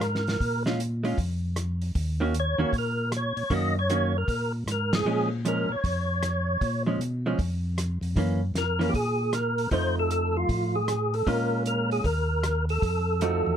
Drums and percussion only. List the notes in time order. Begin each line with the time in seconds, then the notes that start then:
0.01 cross-stick, closed hi-hat
0.15 snare
0.27 snare, open hi-hat
0.40 kick, open hi-hat
0.66 snare
0.80 closed hi-hat
1.05 open hi-hat
1.18 kick, open hi-hat
1.56 cross-stick, closed hi-hat
1.82 open hi-hat
1.95 kick, open hi-hat
2.34 closed hi-hat
2.73 kick, open hi-hat
3.12 cross-stick, closed hi-hat
3.37 open hi-hat
3.50 kick, open hi-hat
3.90 closed hi-hat
4.28 kick, open hi-hat
4.68 cross-stick, closed hi-hat
4.93 snare, ride
5.45 closed hi-hat
5.84 kick, open hi-hat
6.23 cross-stick, closed hi-hat
6.61 kick, open hi-hat
7.01 closed hi-hat
7.39 kick, open hi-hat
7.78 cross-stick, closed hi-hat
8.03 open hi-hat
8.16 kick, open hi-hat
8.55 snare, closed hi-hat
8.81 open hi-hat
8.94 kick, open hi-hat
9.33 cross-stick, closed hi-hat
9.58 open hi-hat
9.71 kick, open hi-hat
10.11 closed hi-hat
10.49 kick, open hi-hat
10.88 cross-stick, closed hi-hat
11.14 open hi-hat
11.27 kick, open hi-hat
11.66 closed hi-hat
11.91 open hi-hat
12.04 kick, open hi-hat
12.43 cross-stick, closed hi-hat
12.69 open hi-hat
12.82 kick, open hi-hat
13.21 closed hi-hat